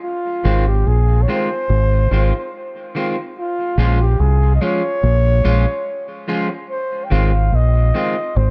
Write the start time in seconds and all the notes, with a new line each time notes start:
0.03 F4
0.44 G#1 D#3 G#3 C4 F4
0.68 G4
0.87 A#1 G#4
1.22 C#5
1.28 D#3 G#3 C4 F4 C5
1.70 G#1
2.11 G#1 D#3 G#3 C4 F4
2.95 D#3 G#3 C4 F4
3.39 F4
3.78 A#1 F3 G#3 C#4 F4
4.02 G4
4.20 C2 G#4
4.55 D#5
4.61 F3 G#3 C#4 F4 C#5
5.03 A#1
5.44 A#1 F3 G#3 C#4 F4
6.28 F3 G#3 C#4 F4
6.49 muted clean electric guitar stroke
6.70 C5
7.05 G5
7.10 G#1 D#3 G#3 C4 F4 F5
7.52 A#1 D#5
7.94 D#3 G#3 C4 F4
8.36 G#1 C5